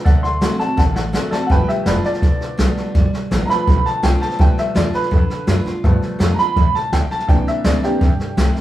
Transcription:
0.05 upright bass D2, upright piano A4 D5 F#5, kick, snare
0.22 upright piano A4 D5 F#5, clean electric guitar C6, snare
0.41 steel-string acoustic guitar D3 A3 C4 F#4, upright piano A4 D5 F#5, snare, hi-hat pedal
0.59 steel-string acoustic guitar C4 F#4, upright piano A4 D5 F#5, clean electric guitar A5, muted upright bass stroke, snare
0.77 upright bass A1, steel-string acoustic guitar A2, upright piano A4 D5 F#5, kick, snare
0.95 upright piano A4 D5 F#5, snare
1.13 steel-string acoustic guitar D3 A3 C4 F#4, upright piano A4 D5 F#5, snare, hi-hat pedal
1.31 steel-string acoustic guitar C4 F#4, upright piano A4 D5 A5, muted upright bass stroke, snare
1.47 upright bass G1, upright piano F3 F#5, steel-string acoustic guitar G3, kick, snare
1.51 upright piano A3 B3 B4 G5
1.68 upright piano G4 E5, muted upright bass stroke, snare
1.86 upright bass F1, steel-string acoustic guitar G3 B3 F4, upright piano B4 D5, snare, hi-hat pedal
2.04 upright piano D5, muted upright bass stroke, snare
2.13 snare
2.22 upright bass A1, steel-string acoustic guitar D3, kick, snare
2.40 muted upright bass stroke, snare
2.57 upright bass B1, steel-string acoustic guitar G3 B3 F4, snare, hi-hat pedal
2.77 snare
2.95 upright bass G1, steel-string acoustic guitar G3, kick, snare
3.12 muted upright bass stroke, snare
3.31 upright bass A1, steel-string acoustic guitar G3 B3 F4, snare, hi-hat pedal
3.46 upright piano F3 A3 A#5, steel-string acoustic guitar F4, muted upright bass stroke
3.50 upright piano B3 B5, steel-string acoustic guitar B3, snare
3.67 upright bass B1, steel-string acoustic guitar D3, kick, snare
3.86 upright piano A5, snare
4.03 upright bass C2, steel-string acoustic guitar G3 B3 F4, upright piano G5, snare, hi-hat pedal
4.20 steel-string acoustic guitar B3 F4, upright piano A5, snare
4.31 snare
4.39 upright bass D2, upright piano F3 A3 B3 G5, steel-string acoustic guitar G3, kick, snare
4.57 upright piano E5, muted upright bass stroke, snare
4.75 upright bass E2, steel-string acoustic guitar G3 B3 F4, upright piano D5, snare, hi-hat pedal
4.93 steel-string acoustic guitar B3 F4, upright piano B4, muted upright bass stroke, snare
5.03 snare
5.11 upright bass F2, steel-string acoustic guitar D3, kick, snare
5.30 muted upright bass stroke, snare
5.47 upright bass F#2, steel-string acoustic guitar G3 B3 F4, snare, hi-hat pedal
5.66 steel-string acoustic guitar B3 F4, muted upright bass stroke, snare
5.84 upright bass G2, upright piano F3 A3 B3, steel-string acoustic guitar G3, kick, snare
6.02 muted upright bass stroke, snare
6.19 upright bass F2, steel-string acoustic guitar G3 B3 F4, snare, hi-hat pedal
6.34 upright piano A#5
6.38 steel-string acoustic guitar B3 F4, upright piano B5, snare
6.56 upright bass E2, steel-string acoustic guitar A2, kick, snare
6.75 upright piano A5, snare
6.92 upright bass D2, steel-string acoustic guitar B2, upright piano G5, snare, hi-hat pedal
7.10 upright piano A5, muted upright bass stroke, snare
7.19 snare
7.28 upright bass C2, steel-string acoustic guitar C3, upright piano E3 A#3 D4 G5, kick, snare
7.47 upright piano E5, snare
7.64 upright bass D2, steel-string acoustic guitar E3 A#3 C4 E4, upright piano D5, snare, hi-hat pedal
7.83 upright piano E3 A#3 D4 G4, steel-string acoustic guitar C4 E4, snare
8.01 upright bass E2, steel-string acoustic guitar G2, kick, snare
8.19 muted upright bass stroke, snare
8.37 upright bass C2, steel-string acoustic guitar E3 A#3 C4 E4, snare, hi-hat pedal
8.55 steel-string acoustic guitar C4 E4, snare

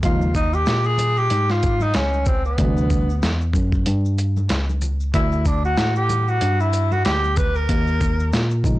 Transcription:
0.02 tine electric piano D#2 C#3 F3 G#3 D#4, tenor saxophone F4, kick, closed hi-hat, maracas
0.21 maracas
0.35 tenor saxophone D#4, kick, shaker, maracas
0.53 tenor saxophone G4, maracas
0.66 tine electric piano A#2, snare, closed hi-hat, low conga, maracas
0.84 tenor saxophone G#4, maracas
0.98 closed hi-hat, high conga, low conga, maracas, shaker
1.16 tenor saxophone G4, maracas
1.30 tine electric piano G#2, closed hi-hat, high conga, maracas
1.49 tenor saxophone F4, snare, maracas
1.63 kick, closed hi-hat, maracas, shaker
1.80 tenor saxophone D#4, high conga, maracas
1.94 tine electric piano C#2, tenor saxophone C#4, snare, closed hi-hat, maracas
2.13 high conga, maracas
2.26 tenor saxophone C4, kick, low conga, shaker, maracas
2.45 tenor saxophone B3, maracas
2.58 tine electric piano D2 C3 E3 G3 C4, kick, closed hi-hat, maracas
2.66 tine electric piano D4
2.77 maracas
2.90 kick, shaker, maracas
3.10 maracas
3.22 tine electric piano E2, snare, closed hi-hat, low conga, maracas
3.41 maracas
3.53 tine electric piano F#2, kick, high conga, low conga, maracas, shaker
3.72 kick, maracas
3.86 tine electric piano G2, closed hi-hat, high conga, maracas
4.05 maracas
4.18 closed hi-hat, shaker, maracas
4.37 high conga, maracas
4.49 tine electric piano C#2, snare, closed hi-hat, maracas
4.69 high conga, maracas
4.81 low conga, shaker, maracas
5.00 maracas
5.14 tine electric piano D2, tenor saxophone E4, kick, closed hi-hat, maracas
5.32 maracas
5.45 tenor saxophone D4, kick, maracas, shaker
5.64 tenor saxophone F#4, maracas
5.77 tine electric piano A2, snare, closed hi-hat, low conga, maracas
5.95 tenor saxophone G4, maracas
6.09 high conga, low conga, maracas, shaker
6.28 tenor saxophone F#4, maracas
6.41 tine electric piano G2, closed hi-hat, high conga, maracas
6.60 tenor saxophone E4, maracas
6.73 closed hi-hat, shaker, maracas
6.91 tenor saxophone F#4, high conga, maracas
7.05 tine electric piano D2, tenor saxophone G4, snare, closed hi-hat, maracas
7.24 high conga, maracas
7.36 tenor saxophone B4, kick, low conga, shaker, maracas
7.55 tenor saxophone A#4, maracas
7.69 tine electric piano D#2, kick, closed hi-hat, maracas
7.87 maracas
8.01 kick, maracas, shaker
8.20 maracas
8.32 tine electric piano A#2, snare, closed hi-hat, low conga, maracas
8.51 maracas
8.64 tine electric piano C#3 F3 G#3 D#4, kick, high conga, low conga, maracas, shaker

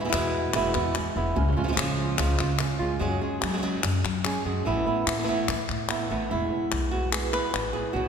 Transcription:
Already playing: nylon-string guitar B2 E3 G#3 B3 E4
0.00 nylon-string guitar G#3 B3 E4
0.04 nylon-string guitar E3 G#3 B3 E4
0.09 nylon-string guitar G#3 B3 E4
0.13 upright bass E2, nylon-string guitar B2 E3 G#3 B3 E4, clap
0.53 upright bass E1, nylon-string guitar B2 E3 G#3 B3 E4, muted nylon-string guitar stroke, clap
0.74 upright bass E2, nylon-string guitar G#3 B3 E4, clap
0.94 nylon-string guitar E3 G#3 B3 E4, muted nylon-string guitar stroke, clap
1.15 upright bass E1, nylon-string guitar G#3 B3 E4
1.35 upright bass C#2, nylon-string guitar C#3 F3 G#3 C#4 F4, muted nylon-string guitar stroke
1.47 nylon-string guitar F3 G#3 C#4 F4
1.52 nylon-string guitar F3 G#3 C#4 F4
1.56 nylon-string guitar C#3 F3 G#3 C#4 F4
1.64 nylon-string guitar F3 G#3 C#4 F4
1.68 nylon-string guitar F3 G#3 C#4 F4
1.73 nylon-string guitar F3 G#3 C#4 F4
1.77 upright bass C#3, nylon-string guitar C#3 F3 G#3 C#4 F4, clap
2.17 upright bass C#2, nylon-string guitar C#3 F3 G#3 C#4 F4, muted nylon-string guitar stroke, clap
2.39 upright bass C#3, nylon-string guitar G#3 C#4 F4, clap
2.59 nylon-string guitar F3 G#3 C#4 F4, muted nylon-string guitar stroke, clap
2.79 upright bass C#2, nylon-string guitar G#3 C#4 F4
2.99 upright bass F#2, nylon-string guitar F#3 G#3 C#4 G#4
3.21 nylon-string guitar G#3 C#4 G#4
3.41 upright bass F#3, nylon-string guitar G#3 C#4 G#4, clap
3.49 nylon-string guitar F#3 G#3 C#4 G#4
3.53 nylon-string guitar F#3 G#3 C#4 G#4
3.58 nylon-string guitar F#3 G#3 C#4 G#4
3.62 nylon-string guitar F#3 G#3 C#4 G#4
3.83 upright bass F#2, muted nylon-string guitar stroke, clap
4.04 upright bass F#3, clap
4.24 nylon-string guitar F#3 G#3 C#4 G#4, clap
4.45 upright bass F#2, nylon-string guitar F#3 G#3 C#4 G#4
4.65 upright bass A1, nylon-string guitar E3 A3 B3 E4
4.86 nylon-string guitar A3 B3 E4
5.06 upright bass A2, nylon-string guitar A3 B3 E4, clap
5.19 nylon-string guitar E3 A3 B3 E4
5.23 nylon-string guitar E3 A3 B3 E4
5.27 nylon-string guitar E3 A3 B3 E4
5.49 upright bass A1, muted nylon-string guitar stroke, clap
5.69 upright bass A2, clap
5.89 nylon-string guitar E3 A3 B3 E4, clap
6.09 upright bass A1, nylon-string guitar E3 A3 B3 E4
6.30 upright bass E1, nylon-string guitar E2 B2 E3 G#3 B3 E4
6.50 nylon-string guitar G#3 B3 E4
6.71 upright bass B1, muted nylon-string guitar stroke, clap
6.91 nylon-string guitar G#3 B3 E4 F#4
7.11 nylon-string guitar B2 E3 G#3 B3 E4 G#4, clap
7.32 nylon-string guitar G#3 B3 E4 B4, clap
7.53 upright bass A1, nylon-string guitar G#2, muted nylon-string guitar stroke, clap
7.73 nylon-string guitar A2 G#3 B3 E4 G#4
7.93 upright bass B1, nylon-string guitar B2 F#3 B3 D#4 F#4

